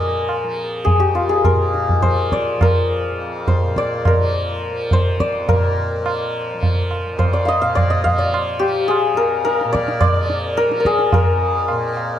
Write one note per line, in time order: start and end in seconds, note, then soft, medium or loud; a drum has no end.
0.00 0.96 F2 medium
0.00 1.49 A#2 medium
0.00 0.44 F3 medium
0.00 0.84 G#4 medium
0.00 1.44 A#4 medium
0.00 0.19 C5 medium
0.00 0.98 D5 medium
0.29 tabla na medium
0.44 2.03 F3 medium
0.85 1.06 G#4 medium
0.85 tabla tin medium
0.85 tabla ge medium
0.97 3.10 F2 medium
0.97 1.35 G4 medium
1.15 4.51 F4 medium
1.15 tabla na medium
1.29 4.33 G#4 medium
1.45 2.62 A#4 medium
1.45 tabla na medium
1.45 tabla ge medium
1.50 3.63 A#2 medium
1.74 tabla te medium
1.89 tabla ge medium
2.02 2.57 F3 medium
2.02 3.47 C5 medium
2.02 tabla tin medium
2.02 tabla ge medium
2.32 3.77 D5 loud
2.32 tabla ke medium
2.57 4.17 F3 medium
2.57 tabla na loud
2.57 tabla ge medium
2.62 4.07 A#4 medium
3.11 5.21 F2 medium
3.47 4.93 C5 medium
3.47 tabla tin medium
3.47 tabla ge medium
3.63 5.46 A#2 medium
3.76 5.20 D5 loud
3.76 tabla ke medium
4.05 5.48 A#4 medium
4.05 tabla na loud
4.05 tabla ge medium
4.17 4.70 F3 medium
4.70 5.99 F3 medium
4.91 7.18 C5 loud
4.91 tabla tin medium
4.91 tabla ge medium
5.20 7.06 F2 medium
5.20 7.33 D5 loud
5.20 tabla ke medium
5.46 7.59 A#2 medium
5.46 8.32 A#4 medium
5.46 tabla tin loud
5.46 tabla ge loud
5.99 6.54 F3 medium
6.06 tabla na medium
6.54 8.11 F3 medium
6.63 tabla tin medium
6.63 tabla ge medium
6.91 tabla na medium
7.06 9.13 F2 medium
7.19 9.82 C5 medium
7.19 tabla na medium
7.19 tabla ge medium
7.33 7.54 D5 medium
7.45 7.81 D#5 loud
7.45 7.61 F5 medium
7.45 tabla te medium
7.60 9.64 A#2 medium
7.60 8.04 F5 loud
7.75 7.96 D5 loud
7.75 tabla na medium
7.75 tabla ge medium
7.90 8.24 D#5 medium
8.04 10.26 F5 loud
8.04 tabla ge medium
8.11 8.62 F3 medium
8.18 9.72 D5 medium
8.34 tabla na medium
8.59 10.16 F3 medium
8.59 8.94 G4 medium
8.88 10.86 G#4 medium
8.88 tabla na medium
9.14 11.20 F2 medium
9.14 9.44 A#4 loud
9.45 10.57 A#4 loud
9.45 tabla te medium
9.61 11.70 A#2 medium
9.61 tabla te medium
9.73 10.00 D5 loud
9.73 tabla ke medium
9.88 tabla te medium
10.01 12.19 D5 loud
10.01 tabla na medium
10.01 tabla ge medium
10.16 10.69 F3 medium
10.30 tabla te medium
10.57 10.80 A#4 loud
10.57 tabla te medium
10.69 12.19 F3 medium
10.69 tabla te medium
10.80 11.13 A#4 medium
10.85 12.19 G#4 medium
10.85 tabla ke medium
10.99 tabla te medium
11.12 12.19 A#4 loud
11.12 tabla tin loud
11.12 tabla ge loud
11.20 12.19 F2 medium
11.68 12.19 A#2 medium
11.68 tabla na medium
11.97 tabla na medium